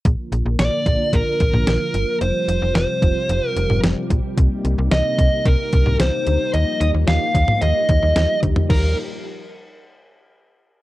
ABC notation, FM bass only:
X:1
M:4/4
L:1/16
Q:1/4=111
K:Eb
V:1 name="FM bass" clef=bass
B,,, z B,,, B,,, B,,, z B,,, z B,,, z B,,, B,,, B,,, z G,,, z | F,,, z F,,, F,,, F,,, z F,,, z F,,, z F,,, F,,, F,,, z B,,, z | C,, z C,, C,, C,, z C,, z C,, z C,, C,, C,, z D,, z | E,, z E,, E,, E,, z E,, z E,, z E,, E,, E,, z D,, z |
E,,2 z12 z2 |]